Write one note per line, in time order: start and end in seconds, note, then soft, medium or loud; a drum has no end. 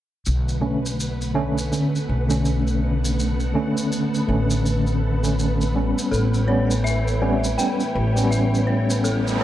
0.25 1.70 B1 medium
0.25 6.08 D3 medium
0.25 9.44 A3 medium
0.25 9.44 B3 medium
0.25 9.44 B4 medium
0.25 3.16 B4 medium
0.25 6.08 F#5 medium
0.25 maracas medium
0.49 maracas soft
0.61 0.85 D3 medium
0.61 0.86 A3 medium
0.61 0.86 C#4 medium
0.86 maracas medium
1.00 maracas medium
1.21 maracas soft
1.34 1.59 D3 medium
1.34 1.59 A3 medium
1.34 1.59 C#4 loud
1.58 maracas medium
1.71 1.96 D3 medium
1.71 1.96 A3 medium
1.71 1.96 C#4 medium
1.71 maracas medium
1.95 maracas soft
2.09 3.53 B1 medium
2.29 3.51 D3 medium
2.29 3.51 A3 medium
2.29 3.52 C#4 medium
2.29 maracas medium
2.45 maracas medium
2.67 maracas soft
3.05 maracas medium
3.19 6.09 A4 medium
3.19 maracas medium
3.40 maracas soft
3.54 4.24 D3 medium
3.54 4.25 A3 medium
3.54 4.25 C#4 medium
3.77 maracas medium
3.92 maracas medium
4.14 maracas soft
4.27 5.92 A1 medium
4.27 5.17 D3 medium
4.27 5.18 A3 medium
4.27 5.18 C#4 medium
4.50 maracas medium
4.66 maracas medium
4.87 maracas soft
5.23 5.71 D3 medium
5.23 5.71 A3 medium
5.23 5.72 C#4 medium
5.23 maracas medium
5.39 maracas soft
5.61 maracas soft
5.74 6.44 G3 medium
5.74 6.44 B3 medium
5.74 6.45 C#4 medium
5.98 maracas medium
6.11 7.55 A1 medium
6.11 9.44 E4 medium
6.11 6.45 A4 medium
6.11 9.44 C#5 medium
6.11 9.44 G5 medium
6.11 maracas medium
6.34 maracas soft
6.47 6.71 G3 medium
6.47 6.72 B3 medium
6.47 6.72 C#4 medium
6.47 6.81 C#5 medium
6.71 maracas medium
6.84 7.55 E5 medium
6.84 maracas medium
7.07 maracas soft
7.21 7.45 G3 medium
7.21 7.45 B3 medium
7.21 7.45 C#4 loud
7.44 maracas medium
7.58 7.82 G3 medium
7.58 7.82 B3 medium
7.58 7.82 C#4 medium
7.58 7.93 G5 medium
7.58 maracas medium
7.80 maracas soft
7.95 9.38 A1 medium
8.16 9.37 G3 medium
8.16 9.38 B3 medium
8.16 9.38 C#4 loud
8.16 maracas medium
8.31 8.64 E5 medium
8.31 maracas medium
8.54 maracas soft
8.67 9.02 C#5 medium
8.90 maracas medium
9.04 9.38 A4 medium
9.04 noise sweep medium
9.04 maracas medium
9.27 maracas soft